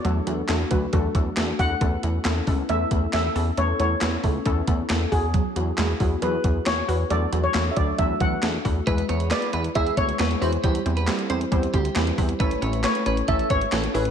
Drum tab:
HH |x-x-x-x-x-x-x-o-|x-x-x-o-x-x-x-o-|x-x-x-o-x-x-x-o-|x-x-x-o-x-x-x-o-|
CP |----x-------x---|----x-------x---|----x-------x---|----x-------x---|
SD |----o-------o---|----o-------o---|----o-------o---|----o-------o---|
BD |------o-o-o---o-|o-----o---o-----|------o-o-o---o-|o-----o---o-----|

HH |x-x-x-x-x-x-x-o-|xxxxxxxxxxxxxxox|xxxxxxxxxxxxxxox|xxxxxxxxxxxxxxox|
CP |----x-------x---|----x-------x---|----x-------x---|----x-------x---|
SD |----o-------o---|----o-------o---|----o-------o---|----o-------o---|
BD |------o-o-o---o-|o-------o-o-----|o-------o-o---o-|o-------o-o-----|